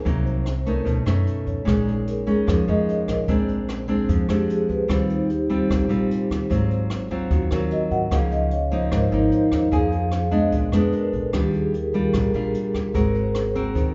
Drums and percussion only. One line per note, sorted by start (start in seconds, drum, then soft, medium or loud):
0.06 kick medium
0.06 closed hi-hat soft
0.26 closed hi-hat soft
0.46 cross-stick soft
0.46 closed hi-hat soft
0.66 kick soft
0.66 closed hi-hat soft
0.86 kick medium
0.86 closed hi-hat soft
1.06 cross-stick medium
1.06 closed hi-hat soft
1.27 closed hi-hat soft
1.47 kick soft
1.47 closed hi-hat soft
1.67 kick medium
1.67 cross-stick medium
1.67 closed hi-hat soft
1.88 closed hi-hat soft
2.07 closed hi-hat soft
2.28 kick soft
2.28 closed hi-hat soft
2.48 kick medium
2.48 cross-stick medium
2.48 closed hi-hat soft
2.68 closed hi-hat soft
2.88 closed hi-hat soft
3.08 kick soft
3.08 cross-stick medium
3.08 closed hi-hat soft
3.28 kick medium
3.28 closed hi-hat soft
3.48 closed hi-hat soft
3.69 cross-stick medium
3.69 closed hi-hat soft
3.88 kick soft
3.88 closed hi-hat soft
4.09 kick medium
4.09 closed hi-hat soft
4.29 cross-stick medium
4.29 closed hi-hat soft
4.50 closed hi-hat soft
4.69 kick soft
4.69 closed hi-hat soft
4.89 kick medium
4.89 cross-stick medium
4.89 closed hi-hat soft
5.10 closed hi-hat soft
5.30 closed hi-hat soft
5.50 kick soft
5.50 closed hi-hat soft
5.70 kick medium
5.70 cross-stick medium
5.70 closed hi-hat medium
5.90 closed hi-hat soft
6.11 closed hi-hat soft
6.31 kick soft
6.31 cross-stick medium
6.31 closed hi-hat soft
6.51 kick medium
6.51 closed hi-hat soft
6.71 closed hi-hat soft
6.90 cross-stick medium
6.90 closed hi-hat soft
7.11 kick soft
7.11 closed hi-hat soft
7.30 kick medium
7.30 closed hi-hat soft
7.51 cross-stick medium
7.51 closed hi-hat soft
7.71 closed hi-hat soft
7.91 kick soft
7.91 closed hi-hat soft
8.11 kick medium
8.11 cross-stick medium
8.11 closed hi-hat soft
8.31 closed hi-hat soft
8.51 closed hi-hat soft
8.71 kick soft
8.71 closed hi-hat soft
8.91 kick medium
8.91 cross-stick medium
8.91 closed hi-hat soft
9.12 closed hi-hat soft
9.31 closed hi-hat soft
9.52 kick soft
9.52 cross-stick medium
9.52 closed hi-hat soft
9.72 kick medium
9.72 closed hi-hat soft
9.92 closed hi-hat soft
10.11 cross-stick medium
10.11 closed hi-hat soft
10.32 kick soft
10.32 closed hi-hat soft
10.52 kick medium
10.52 closed hi-hat soft
10.72 cross-stick medium
10.72 closed hi-hat soft
10.92 closed hi-hat soft
11.13 kick soft
11.13 closed hi-hat soft
11.33 kick medium
11.33 cross-stick medium
11.33 closed hi-hat soft
11.53 closed hi-hat soft
11.74 closed hi-hat soft
11.94 kick soft
11.94 closed hi-hat soft
12.13 kick medium
12.13 cross-stick medium
12.13 closed hi-hat soft
12.34 closed hi-hat soft
12.54 closed hi-hat soft
12.74 kick soft
12.74 cross-stick medium
12.74 closed hi-hat soft
12.95 kick medium
12.95 closed hi-hat soft
13.14 closed hi-hat soft
13.35 cross-stick medium
13.35 closed hi-hat soft
13.55 kick soft
13.55 closed hi-hat soft
13.75 kick medium
13.75 closed hi-hat soft